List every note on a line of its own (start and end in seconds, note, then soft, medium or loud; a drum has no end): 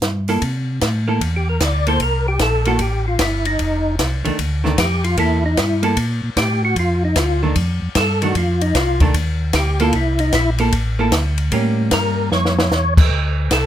0.01 0.38 G2 medium
0.01 snare medium
0.01 closed hi-hat soft
0.28 0.41 A#3 medium
0.28 0.41 E4 medium
0.28 0.41 A4 medium
0.28 open hi-hat soft
0.42 0.80 C3 medium
0.42 kick soft
0.42 ride medium
0.81 1.20 A2 medium
0.81 kick soft
0.81 snare medium
0.81 hi-hat pedal medium
0.81 ride medium
1.08 1.20 A#3 medium
1.08 1.20 E4 medium
1.08 1.20 A4 medium
1.21 1.59 E2 medium
1.21 kick soft
1.21 ride medium
1.36 1.48 G4 medium
1.49 1.61 A#4 medium
1.60 1.99 D2 medium
1.60 1.88 D5 medium
1.60 kick soft
1.60 snare medium
1.60 hi-hat pedal medium
1.60 ride medium
1.87 1.99 A#3 soft
1.87 2.00 E4 medium
1.87 2.00 A4 medium
1.87 2.01 C5 medium
1.87 ride soft
2.00 2.39 C2 medium
2.00 2.27 A#4 medium
2.00 kick soft
2.00 ride soft
2.28 2.40 G4 medium
2.39 2.78 A#1 medium
2.39 2.66 A4 medium
2.39 kick soft
2.39 snare medium
2.39 hi-hat pedal soft
2.39 ride medium
2.65 2.79 A#3 medium
2.65 2.79 E4 medium
2.65 2.80 F#4 medium
2.65 2.79 A4 medium
2.65 ride soft
2.79 3.18 A1 medium
2.79 3.06 G4 medium
2.79 kick soft
2.79 ride medium
3.08 3.20 F4 medium
3.19 3.58 G1 medium
3.19 3.46 E4 medium
3.19 kick soft
3.19 snare medium
3.19 hi-hat pedal soft
3.19 ride medium
3.45 3.96 D#4 medium
3.45 ride soft
3.59 3.98 F1 medium
3.59 kick soft
3.59 ride soft
3.99 4.23 C2 medium
3.99 kick soft
3.99 snare medium
3.99 hi-hat pedal soft
3.99 ride medium
4.25 4.32 C2 soft
4.25 4.37 D#3 medium
4.25 4.37 A3 medium
4.25 4.38 D4 medium
4.25 ride soft
4.39 4.77 D2 medium
4.39 kick soft
4.39 ride medium
4.64 4.76 D#3 medium
4.64 4.77 A3 medium
4.64 4.77 D4 medium
4.64 snare soft
4.78 5.16 F2 medium
4.78 5.04 G4 medium
4.78 kick soft
4.78 snare medium
4.78 hi-hat pedal medium
4.78 ride medium
5.04 5.17 F4 medium
5.04 ride soft
5.17 5.56 E2 medium
5.17 5.41 A#3 medium
5.17 5.42 E4 soft
5.17 5.44 E4 medium
5.17 5.42 A4 medium
5.17 kick soft
5.17 ride soft
5.46 5.58 D#4 medium
5.57 5.96 G2 medium
5.57 5.83 E4 medium
5.57 kick soft
5.57 snare medium
5.57 hi-hat pedal soft
5.57 ride medium
5.83 5.95 A#3 medium
5.83 5.96 E4 medium
5.83 5.96 A4 medium
5.83 ride soft
5.97 6.21 A#2 medium
5.97 kick soft
5.97 ride medium
6.23 6.30 A#2 soft
6.36 6.75 A2 medium
6.36 6.63 G4 medium
6.36 kick soft
6.36 snare medium
6.36 hi-hat pedal soft
6.36 ride medium
6.65 6.77 F#4 medium
6.76 7.15 F2 medium
6.76 7.03 F4 medium
6.76 kick soft
6.76 ride medium
7.05 7.17 D#4 medium
7.16 7.55 D2 medium
7.16 7.42 F4 medium
7.16 kick soft
7.16 snare medium
7.16 hi-hat pedal medium
7.16 ride medium
7.43 7.55 D#3 medium
7.43 7.55 A3 medium
7.43 7.55 D4 medium
7.55 7.80 F2 medium
7.55 kick soft
7.55 ride medium
7.82 7.89 F2 soft
7.95 8.34 G2 medium
7.95 8.22 A4 medium
7.95 kick soft
7.95 snare medium
7.95 hi-hat pedal soft
7.95 ride medium
8.22 8.34 D#3 medium
8.22 8.35 A3 medium
8.22 8.35 D4 medium
8.22 8.36 F#4 medium
8.22 ride soft
8.35 8.74 F2 medium
8.35 8.62 F4 medium
8.35 kick soft
8.35 ride medium
8.61 8.75 D#4 medium
8.61 ride soft
8.75 9.13 C2 medium
8.75 9.01 F4 medium
8.75 kick soft
8.75 snare medium
8.75 hi-hat pedal medium
8.75 ride medium
9.00 9.13 D#3 medium
9.00 9.14 A3 medium
9.00 9.14 D4 medium
9.00 kick soft
9.00 ride soft
9.14 9.53 D#2 medium
9.14 kick soft
9.14 ride medium
9.53 9.92 D2 medium
9.53 9.80 G4 medium
9.53 kick soft
9.53 snare medium
9.53 hi-hat pedal soft
9.53 ride medium
9.79 9.93 A#3 medium
9.79 9.93 E4 medium
9.79 9.94 F4 medium
9.79 9.93 A4 medium
9.79 ride soft
9.93 10.32 C2 medium
9.93 10.20 E4 medium
9.93 kick soft
9.93 ride soft
10.19 10.33 D#4 medium
10.19 ride soft
10.32 10.72 A#1 medium
10.32 10.50 E4 medium
10.32 kick soft
10.32 snare medium
10.32 hi-hat pedal soft
10.32 ride medium
10.58 10.72 A#3 medium
10.58 10.72 E4 medium
10.58 10.72 A4 medium
10.58 ride soft
10.72 11.11 A1 medium
10.72 kick soft
10.72 ride medium
10.99 11.11 A#3 medium
10.99 11.12 E4 medium
10.99 11.12 A4 medium
11.12 11.51 D2 medium
11.12 kick soft
11.12 snare medium
11.12 hi-hat pedal medium
11.12 ride medium
11.38 ride soft
11.52 11.91 A2 medium
11.52 12.63 G3 medium
11.52 12.63 A#3 medium
11.52 12.64 C#4 medium
11.52 kick soft
11.52 ride medium
11.91 12.30 G2 medium
11.91 12.30 A#4 medium
11.91 kick soft
11.91 snare medium
11.91 hi-hat pedal soft
11.91 ride medium
12.31 12.70 F2 medium
12.31 12.94 C#5 medium
12.31 snare soft
12.45 snare medium
12.59 snare medium
12.70 13.09 E2 medium
12.70 snare medium
12.70 hi-hat pedal soft
12.97 kick medium
12.97 crash medium
13.11 13.50 D2 medium
13.11 kick soft
13.51 13.66 C2 medium
13.51 13.66 A4 medium
13.51 kick soft
13.51 snare medium
13.51 hi-hat pedal soft
13.51 ride medium